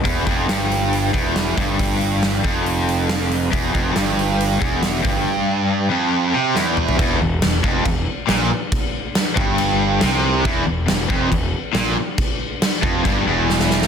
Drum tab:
CC |----------------|----------------|----------------|----------------|
HH |o-o-o-o-o-o-o-o-|o-o-o-o-o-o-o-o-|o-o-o-o-o---o-o-|----------------|
SD |----o-------o---|----o-------o---|----o-------o---|------------o---|
T2 |----------------|----------------|----------------|--------------o-|
FT |----------------|----------------|----------------|---------------o|
BD |o-o-------o---o-|o-----o---------|o-o-------o---o-|----------------|

CC |x---x---x---x---|x---x---x---x---|x---x---x---x---|x---x---x-------|
HH |----------------|----------------|----------------|----------------|
SD |----o-------o---|----o-------o---|----o-------o---|----o-------oooo|
T2 |----------------|----------------|----------------|----------------|
FT |----------------|----------------|----------------|----------------|
BD |o-----o-o-------|o-----o---------|o-----o-o-------|o-----o-o-------|